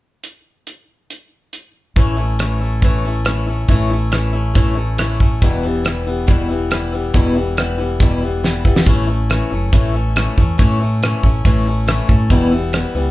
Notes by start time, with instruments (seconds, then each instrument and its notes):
0.24 closed hi-hat
0.67 closed hi-hat
1.10 closed hi-hat
1.53 closed hi-hat
1.96 fingered electric bass A1, steel-string acoustic guitar A2 E3 A3 C#4 E4, kick, closed hi-hat
2.17 steel-string acoustic guitar A3 C#4 E4
2.39 steel-string acoustic guitar E3 A3 C#4 E4, cross-stick, closed hi-hat
2.61 steel-string acoustic guitar A3 C#4 E4
2.82 steel-string acoustic guitar A2 E3 A3 C#4 E4, kick, closed hi-hat
3.05 steel-string acoustic guitar A3 C#4 E4
3.25 steel-string acoustic guitar E3 A3 C#4 E4, cross-stick, closed hi-hat
3.47 steel-string acoustic guitar A3 C#4 E4
3.68 fingered electric bass A1, steel-string acoustic guitar A2 E3 A3 C#4 E4, kick, closed hi-hat
3.90 steel-string acoustic guitar A3 C#4 E4
4.12 steel-string acoustic guitar E3 A3 C#4 E4, cross-stick, closed hi-hat
4.33 steel-string acoustic guitar A3 C#4 E4
4.54 steel-string acoustic guitar A2 E3 A3 C#4 E4, kick, closed hi-hat
4.75 steel-string acoustic guitar A3 C#4 E4
4.97 steel-string acoustic guitar E3 A3 C#4 E4, cross-stick, closed hi-hat
5.20 steel-string acoustic guitar A3 C#4 E4, kick
5.42 fingered electric bass E1, steel-string acoustic guitar E2 B2 E3 G3 B3 E4, kick, closed hi-hat
5.63 steel-string acoustic guitar E3 G3 B3 E4
5.84 steel-string acoustic guitar E3 G3 B3 E4, cross-stick, closed hi-hat
6.06 steel-string acoustic guitar E3 G3 B3 E4
6.27 steel-string acoustic guitar E2 B2 E3 G3 B3 E4, kick, closed hi-hat
6.49 steel-string acoustic guitar E3 G3 B3 E4
6.71 steel-string acoustic guitar E3 G3 B3 E4, cross-stick, closed hi-hat
6.92 steel-string acoustic guitar E3 G3 B3 E4
7.14 fingered electric bass E1, steel-string acoustic guitar E2 B2 E3 G3 B3 E4, kick, closed hi-hat
7.35 steel-string acoustic guitar E3 G3 B3 E4
7.57 steel-string acoustic guitar E3 G3 B3 E4, cross-stick, closed hi-hat
7.78 steel-string acoustic guitar E3 G3 B3 E4
8.00 steel-string acoustic guitar E2 B2 E3 G3 B3 E4, kick, closed hi-hat
8.22 steel-string acoustic guitar E3 G3 B3 E4
8.43 steel-string acoustic guitar E3 G3 B3 E4, snare
8.65 steel-string acoustic guitar E3 G3 B3 E4, kick
8.76 snare
8.86 fingered electric bass A1, steel-string acoustic guitar A2 E3 A3 C#4 E4, kick, closed hi-hat
9.07 steel-string acoustic guitar A3 C#4 E4
9.29 steel-string acoustic guitar E3 A3 C#4 E4, cross-stick, closed hi-hat
9.51 fingered electric bass F#1, steel-string acoustic guitar A3 C#4 E4
9.72 fingered electric bass A1, steel-string acoustic guitar A2 E3 A3 C#4 E4, kick, closed hi-hat
9.94 steel-string acoustic guitar A3 C#4 E4
10.16 steel-string acoustic guitar E3 A3 C#4 E4, cross-stick, closed hi-hat
10.37 fingered electric bass E2, steel-string acoustic guitar A3 C#4 E4, kick
10.58 steel-string acoustic guitar A2 E3 A3 C#4 E4, fingered electric bass A2, kick, closed hi-hat
10.80 steel-string acoustic guitar A3 C#4 E4
11.03 steel-string acoustic guitar E3 A3 C#4 E4, cross-stick, closed hi-hat
11.23 fingered electric bass A1, steel-string acoustic guitar A3 C#4 E4, kick
11.45 fingered electric bass A1, steel-string acoustic guitar A2 E3 A3 C#4 E4, kick, closed hi-hat
11.66 steel-string acoustic guitar A3 C#4 E4
11.87 steel-string acoustic guitar E3 A3 C#4 E4, cross-stick, closed hi-hat
12.09 fingered electric bass A2, steel-string acoustic guitar A3 C#4 E4, kick
12.30 fingered electric bass E1, steel-string acoustic guitar E2 B2 E3 G3 B3 E4, kick, closed hi-hat
12.52 steel-string acoustic guitar E3 G3 B3 E4
12.73 steel-string acoustic guitar E3 G3 B3 E4, cross-stick, closed hi-hat
12.94 fingered electric bass C#2, steel-string acoustic guitar E3 G3 B3 E4